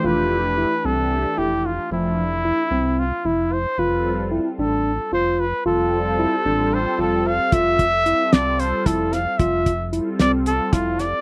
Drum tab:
HH |-------|-------|-------|-------|
SD |-------|-------|-------|-------|
BD |-------|-------|-------|-------|

HH |xxxxxxx|xxxxxxx|
SD |---o--o|---o-oo|
BD |oo---o-|oo---o-|